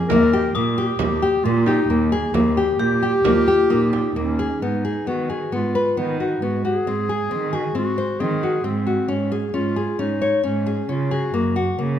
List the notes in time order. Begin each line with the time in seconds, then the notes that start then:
0.08 D#2 A#3 A#4, frame drum
0.33 G4
0.55 A#2 A#3 D#6
0.78 G4
0.99 D#2 A#3, frame drum
1.22 G4
1.44 A#2 A#3 F4
1.66 D#4 G4, frame drum
1.89 D#2 A#3
2.12 G#4
2.34 D#2 A#3 G4, frame drum
2.57 G4
2.79 A#2 A#3 G4
3.03 G4
3.25 D#2 A#3 F4, frame drum
3.48 G4
3.70 A#2 A#3 D#4, frame drum
3.93 G4, frame drum
4.16 D#2 A#3 C#4, frame drum
4.39 G#4
4.62 G#2 B3 D#4
4.85 G#4
5.07 D#3 B3 F#4
5.30 G#4
5.52 G#2 B3 F4
5.75 B4
5.97 D#3 B3 D#4
6.20 F#4
6.42 G#2 B3 F#4
6.65 F#4 G#4
6.87 G#2 C4
7.09 G#4
7.31 D#3 C4
7.53 F#4 G#4
7.75 G#2 C4 F#4
7.98 C5
8.20 D#3 C4 G#4
8.43 F#4
8.64 G#2 C4
8.87 F#4
9.08 G#2 C#4
9.32 G#4
9.53 G#2 C#4 F4
9.76 G#4
9.99 G#2 C#4 D#4
10.22 C#5
10.43 G#2 C#4
10.66 G#4
10.89 C#3 C#4 F4
11.11 F#4 G#4
11.34 F#2 A#3
11.56 F#4
11.79 C#3 A#3